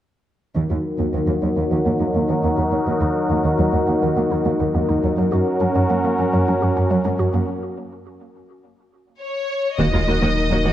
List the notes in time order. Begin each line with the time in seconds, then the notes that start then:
0.56 D#2 D#3 F#3 D#4 F#4 A#4
0.70 D#2 D#4
0.99 D#2 A#3
1.14 D#2 D#3
1.28 D#2 F#3
1.43 D#2 F#3
1.57 D#2 A#3
1.71 D#2 D#3
1.86 D#2 A#3
2.00 D#2 D#4
2.15 D#2 A#3
2.29 D#2 D#3
2.44 D#2 A#3
2.58 D#2 D#4
2.72 D#2 F#3
2.87 D#2 D#3
3.01 D#2 D#4
3.30 D#2 A#3
3.44 D#2 D#3
3.59 D#2 F#3
3.73 D#2 F#3
3.88 D#2 A#3
4.03 D#2 D#3
4.17 D#2 A#3
4.31 D#2 D#4
4.46 D#2 A#3
4.60 D#2 D#3
4.75 D#2 A#3
4.89 D#2 D#4
5.04 D#2 F#3
5.17 F#2 F#3 C#4 F#4 A#4
5.32 F#2 F#4
5.61 F#2 C#4
5.76 F#2 F#3
5.90 F#2 A#3
6.04 F#2 A#3
6.19 F#2 C#4
6.33 F#2 F#3
6.48 F#2 C#4
6.62 F#2 F#4
6.77 F#2 C#4
6.91 F#2 F#3
7.05 F#2 C#4
7.19 F#2 F#4
7.33 F#2 A#3
9.21 C#5
9.78 D#1 D#2 D#3 F#3 A#3 D#4 F#4 A#4 D#5, taiko
9.93 D#2 G#3 D#4 F4
10.08 D#2 A#3 D#4 F#4
10.22 D#2 D#3 A#3 F#4
10.50 D#2 F#3 A#3 F#4
10.64 D#2 D#3 A#3 F#4